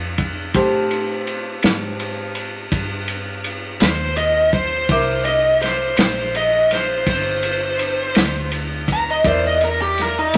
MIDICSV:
0, 0, Header, 1, 5, 480
1, 0, Start_track
1, 0, Tempo, 725514
1, 365, Time_signature, 12, 3, 24, 8
1, 6865, End_track
2, 0, Start_track
2, 0, Title_t, "Lead electric guitar"
2, 0, Program_c, 0, 29
2, 2522, Note_on_c, 0, 72, 91
2, 2755, Note_off_c, 0, 72, 0
2, 2761, Note_on_c, 0, 75, 85
2, 2994, Note_off_c, 0, 75, 0
2, 3002, Note_on_c, 0, 72, 78
2, 3235, Note_off_c, 0, 72, 0
2, 3244, Note_on_c, 0, 72, 100
2, 3470, Note_off_c, 0, 72, 0
2, 3472, Note_on_c, 0, 75, 91
2, 3710, Note_off_c, 0, 75, 0
2, 3718, Note_on_c, 0, 72, 84
2, 3944, Note_off_c, 0, 72, 0
2, 3952, Note_on_c, 0, 72, 85
2, 4190, Note_off_c, 0, 72, 0
2, 4210, Note_on_c, 0, 75, 84
2, 4439, Note_off_c, 0, 75, 0
2, 4453, Note_on_c, 0, 72, 94
2, 4681, Note_off_c, 0, 72, 0
2, 4699, Note_on_c, 0, 72, 99
2, 5625, Note_off_c, 0, 72, 0
2, 5907, Note_on_c, 0, 82, 98
2, 6012, Note_off_c, 0, 82, 0
2, 6024, Note_on_c, 0, 75, 78
2, 6131, Note_off_c, 0, 75, 0
2, 6136, Note_on_c, 0, 72, 82
2, 6247, Note_off_c, 0, 72, 0
2, 6266, Note_on_c, 0, 75, 87
2, 6372, Note_off_c, 0, 75, 0
2, 6380, Note_on_c, 0, 70, 88
2, 6489, Note_off_c, 0, 70, 0
2, 6495, Note_on_c, 0, 67, 82
2, 6626, Note_off_c, 0, 67, 0
2, 6626, Note_on_c, 0, 70, 84
2, 6733, Note_off_c, 0, 70, 0
2, 6740, Note_on_c, 0, 63, 90
2, 6849, Note_off_c, 0, 63, 0
2, 6865, End_track
3, 0, Start_track
3, 0, Title_t, "Upright piano"
3, 0, Program_c, 1, 0
3, 0, Note_on_c, 1, 67, 48
3, 0, Note_on_c, 1, 69, 44
3, 335, Note_off_c, 1, 67, 0
3, 337, Note_off_c, 1, 69, 0
3, 364, Note_on_c, 1, 67, 61
3, 367, Note_on_c, 1, 69, 56
3, 369, Note_on_c, 1, 72, 64
3, 3216, Note_off_c, 1, 67, 0
3, 3218, Note_off_c, 1, 69, 0
3, 3218, Note_off_c, 1, 72, 0
3, 3247, Note_on_c, 1, 64, 53
3, 3252, Note_on_c, 1, 86, 57
3, 3253, Note_on_c, 1, 70, 49
3, 6100, Note_off_c, 1, 64, 0
3, 6102, Note_off_c, 1, 86, 0
3, 6103, Note_off_c, 1, 70, 0
3, 6120, Note_on_c, 1, 64, 52
3, 6122, Note_on_c, 1, 74, 60
3, 6124, Note_on_c, 1, 70, 47
3, 6865, Note_off_c, 1, 64, 0
3, 6865, Note_off_c, 1, 70, 0
3, 6865, Note_off_c, 1, 74, 0
3, 6865, End_track
4, 0, Start_track
4, 0, Title_t, "Fingered electric bass"
4, 0, Program_c, 2, 33
4, 0, Note_on_c, 2, 41, 82
4, 345, Note_off_c, 2, 41, 0
4, 365, Note_on_c, 2, 45, 83
4, 1062, Note_off_c, 2, 45, 0
4, 1086, Note_on_c, 2, 44, 84
4, 1783, Note_off_c, 2, 44, 0
4, 1799, Note_on_c, 2, 43, 86
4, 2499, Note_off_c, 2, 43, 0
4, 2519, Note_on_c, 2, 39, 86
4, 3219, Note_off_c, 2, 39, 0
4, 3239, Note_on_c, 2, 36, 82
4, 3939, Note_off_c, 2, 36, 0
4, 3957, Note_on_c, 2, 34, 86
4, 4658, Note_off_c, 2, 34, 0
4, 4677, Note_on_c, 2, 31, 83
4, 5379, Note_off_c, 2, 31, 0
4, 5401, Note_on_c, 2, 38, 87
4, 6102, Note_off_c, 2, 38, 0
4, 6119, Note_on_c, 2, 40, 81
4, 6821, Note_off_c, 2, 40, 0
4, 6839, Note_on_c, 2, 36, 82
4, 6865, Note_off_c, 2, 36, 0
4, 6865, End_track
5, 0, Start_track
5, 0, Title_t, "Drums"
5, 118, Note_on_c, 9, 51, 62
5, 122, Note_on_c, 9, 36, 70
5, 185, Note_off_c, 9, 51, 0
5, 188, Note_off_c, 9, 36, 0
5, 359, Note_on_c, 9, 51, 76
5, 361, Note_on_c, 9, 36, 96
5, 425, Note_off_c, 9, 51, 0
5, 428, Note_off_c, 9, 36, 0
5, 600, Note_on_c, 9, 51, 57
5, 666, Note_off_c, 9, 51, 0
5, 840, Note_on_c, 9, 51, 55
5, 906, Note_off_c, 9, 51, 0
5, 1075, Note_on_c, 9, 51, 78
5, 1086, Note_on_c, 9, 38, 110
5, 1141, Note_off_c, 9, 51, 0
5, 1152, Note_off_c, 9, 38, 0
5, 1320, Note_on_c, 9, 51, 58
5, 1386, Note_off_c, 9, 51, 0
5, 1554, Note_on_c, 9, 51, 58
5, 1620, Note_off_c, 9, 51, 0
5, 1798, Note_on_c, 9, 36, 82
5, 1798, Note_on_c, 9, 51, 72
5, 1864, Note_off_c, 9, 36, 0
5, 1864, Note_off_c, 9, 51, 0
5, 2036, Note_on_c, 9, 51, 53
5, 2102, Note_off_c, 9, 51, 0
5, 2276, Note_on_c, 9, 51, 56
5, 2343, Note_off_c, 9, 51, 0
5, 2515, Note_on_c, 9, 51, 73
5, 2526, Note_on_c, 9, 38, 104
5, 2581, Note_off_c, 9, 51, 0
5, 2592, Note_off_c, 9, 38, 0
5, 2756, Note_on_c, 9, 51, 56
5, 2822, Note_off_c, 9, 51, 0
5, 2996, Note_on_c, 9, 51, 53
5, 2997, Note_on_c, 9, 36, 72
5, 3062, Note_off_c, 9, 51, 0
5, 3063, Note_off_c, 9, 36, 0
5, 3234, Note_on_c, 9, 51, 73
5, 3236, Note_on_c, 9, 36, 101
5, 3300, Note_off_c, 9, 51, 0
5, 3302, Note_off_c, 9, 36, 0
5, 3472, Note_on_c, 9, 51, 58
5, 3539, Note_off_c, 9, 51, 0
5, 3719, Note_on_c, 9, 51, 62
5, 3730, Note_on_c, 9, 38, 31
5, 3785, Note_off_c, 9, 51, 0
5, 3796, Note_off_c, 9, 38, 0
5, 3950, Note_on_c, 9, 51, 87
5, 3961, Note_on_c, 9, 38, 106
5, 4016, Note_off_c, 9, 51, 0
5, 4028, Note_off_c, 9, 38, 0
5, 4199, Note_on_c, 9, 51, 59
5, 4265, Note_off_c, 9, 51, 0
5, 4438, Note_on_c, 9, 51, 63
5, 4449, Note_on_c, 9, 38, 32
5, 4504, Note_off_c, 9, 51, 0
5, 4515, Note_off_c, 9, 38, 0
5, 4673, Note_on_c, 9, 51, 85
5, 4675, Note_on_c, 9, 36, 81
5, 4739, Note_off_c, 9, 51, 0
5, 4741, Note_off_c, 9, 36, 0
5, 4913, Note_on_c, 9, 51, 61
5, 4979, Note_off_c, 9, 51, 0
5, 5154, Note_on_c, 9, 51, 61
5, 5220, Note_off_c, 9, 51, 0
5, 5391, Note_on_c, 9, 51, 77
5, 5402, Note_on_c, 9, 38, 106
5, 5457, Note_off_c, 9, 51, 0
5, 5469, Note_off_c, 9, 38, 0
5, 5634, Note_on_c, 9, 51, 58
5, 5700, Note_off_c, 9, 51, 0
5, 5876, Note_on_c, 9, 36, 72
5, 5877, Note_on_c, 9, 51, 58
5, 5942, Note_off_c, 9, 36, 0
5, 5943, Note_off_c, 9, 51, 0
5, 6116, Note_on_c, 9, 36, 100
5, 6117, Note_on_c, 9, 51, 71
5, 6183, Note_off_c, 9, 36, 0
5, 6183, Note_off_c, 9, 51, 0
5, 6356, Note_on_c, 9, 51, 55
5, 6423, Note_off_c, 9, 51, 0
5, 6600, Note_on_c, 9, 51, 53
5, 6612, Note_on_c, 9, 38, 29
5, 6666, Note_off_c, 9, 51, 0
5, 6678, Note_off_c, 9, 38, 0
5, 6838, Note_on_c, 9, 51, 77
5, 6865, Note_off_c, 9, 51, 0
5, 6865, End_track
0, 0, End_of_file